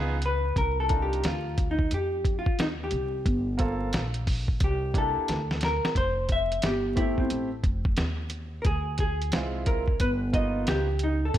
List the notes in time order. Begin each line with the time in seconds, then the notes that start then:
Already playing: C#2 B3 D#4 F4 G#4
0.22 B4, closed hi-hat
0.56 C2 A#4, kick, closed hi-hat
0.80 A4
0.88 D4 D#4 F4 A#4, kick, closed hi-hat
1.02 G4
1.13 closed hi-hat
1.24 D2 F4, snare, closed hi-hat
1.58 kick, closed hi-hat
1.71 D#4
1.79 kick
1.91 F2 G4, closed hi-hat
2.25 kick, closed hi-hat
2.39 F4
2.46 muted upright bass stroke, kick
2.59 D#2 D#4, snare, closed hi-hat
2.84 G4
2.91 C2, closed hi-hat
3.26 G1, kick, closed hi-hat
3.58 A#3 C4 F4 A4, kick, closed hi-hat
3.93 A#1, snare, closed hi-hat
4.14 closed hi-hat
4.27 kick, open hi-hat
4.48 kick
4.60 C2 G4, kick, closed hi-hat
4.94 A#3 D4 E4 G4, kick, closed hi-hat
4.98 A4
5.17 muted upright bass stroke
5.28 D2, snare, closed hi-hat
5.51 snare
5.61 A#4, snare, closed hi-hat
5.85 snare
5.95 F1 C5, kick, closed hi-hat
6.29 E5, kick, closed hi-hat
6.52 closed hi-hat
6.62 G1 G4, snare, closed hi-hat
6.96 A3 C4 E4 G4, kick, closed hi-hat
7.18 C4, kick
7.30 A1, closed hi-hat
7.64 F1, kick, closed hi-hat
7.85 kick
7.97 D#2, snare, closed hi-hat
8.30 closed hi-hat
8.62 D2 A#4, kick, closed hi-hat
8.66 G#4
8.98 G#4, kick, closed hi-hat
9.22 closed hi-hat
9.32 C2 G#3 C4 E4 F4, snare, closed hi-hat
9.66 A#4, kick, closed hi-hat
9.88 kick
10.00 G1 B4, kick, closed hi-hat
10.33 A#3 B3 D#4 F4 D#5, kick, closed hi-hat
10.67 C#2 G4, snare, closed hi-hat
10.99 closed hi-hat
11.03 D#4
11.25 A4
11.34 C2, kick, closed hi-hat